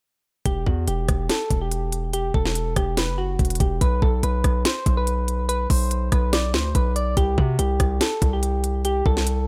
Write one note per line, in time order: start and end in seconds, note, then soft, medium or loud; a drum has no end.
0.46 0.66 E1 loud
0.46 0.65 G4 loud
0.46 kick loud
0.46 closed hi-hat medium
0.66 0.87 E2 loud
0.66 0.86 F#4 medium
0.66 kick medium
0.88 1.08 E1 loud
0.88 1.27 G4 medium
0.88 closed hi-hat medium
1.09 1.29 E1 loud
1.09 kick loud
1.09 cross-stick medium
1.09 closed hi-hat medium
1.29 1.60 A4 medium
1.29 snare loud
1.29 closed hi-hat medium
1.51 2.31 E1 loud
1.51 kick medium
1.51 closed hi-hat medium
1.61 2.10 G4 medium
1.71 closed hi-hat medium
1.92 closed hi-hat medium
2.13 2.33 G4 loud
2.13 closed hi-hat medium
2.34 2.75 E1 loud
2.34 2.74 A4 medium
2.34 kick medium
2.45 snare medium
2.55 closed hi-hat medium
2.76 3.10 E1 loud
2.76 2.96 G4 medium
2.76 kick medium
2.76 cross-stick medium
2.76 closed hi-hat medium
2.97 3.17 B4 medium
2.97 snare loud
2.97 closed hi-hat medium
3.08 3.38 F#1 loud
3.18 3.58 F#4 medium
3.39 3.59 E1 loud
3.39 kick medium
3.39 closed hi-hat soft
3.45 closed hi-hat medium
3.50 closed hi-hat medium
3.55 closed hi-hat medium
3.60 3.80 E1 loud
3.60 3.79 G4 medium
3.60 kick loud
3.60 closed hi-hat medium
3.81 4.01 B1 loud
3.81 4.00 B4 loud
3.81 kick loud
3.81 closed hi-hat medium
4.02 4.22 B1 loud
4.02 4.21 A4 medium
4.02 kick medium
4.23 4.43 B1 loud
4.23 4.63 B4 medium
4.23 closed hi-hat medium
4.44 4.64 B1 loud
4.44 kick medium
4.44 cross-stick medium
4.44 closed hi-hat medium
4.65 4.95 C5 medium
4.65 snare loud
4.65 closed hi-hat loud
4.86 5.67 B1 loud
4.86 kick medium
4.86 closed hi-hat medium
4.97 5.46 B4 medium
5.07 closed hi-hat medium
5.28 closed hi-hat medium
5.49 5.68 B4 loud
5.49 closed hi-hat medium
5.70 6.10 B1 loud
5.70 6.10 C5 medium
5.70 kick loud
5.70 open hi-hat medium
5.91 closed hi-hat medium
6.12 6.55 B1 loud
6.12 6.31 B4 medium
6.12 kick medium
6.12 cross-stick medium
6.12 closed hi-hat medium
6.33 6.52 D5 medium
6.33 snare loud
6.33 closed hi-hat medium
6.54 6.74 D2 loud
6.54 6.73 C5 medium
6.54 snare loud
6.75 7.15 B1 loud
6.75 6.94 B4 medium
6.75 kick medium
6.75 closed hi-hat medium
6.96 7.15 D5 medium
6.96 closed hi-hat medium
7.17 7.37 C2 loud
7.17 7.36 G4 loud
7.17 kick loud
7.17 closed hi-hat medium
7.38 7.58 C3 loud
7.38 7.57 F#4 medium
7.38 kick medium
7.59 7.79 C2 loud
7.59 7.98 G4 medium
7.59 closed hi-hat medium
7.80 8.00 C2 loud
7.80 kick medium
7.80 cross-stick medium
7.80 closed hi-hat medium
8.01 8.31 A4 medium
8.01 snare loud
8.01 closed hi-hat medium
8.22 9.02 C2 loud
8.22 kick medium
8.22 closed hi-hat medium
8.33 8.82 G4 medium
8.43 closed hi-hat medium
8.64 closed hi-hat medium
8.85 9.04 G4 loud
8.85 closed hi-hat medium
9.06 9.46 C2 loud
9.06 9.45 A4 medium
9.06 kick medium
9.17 snare medium
9.27 closed hi-hat medium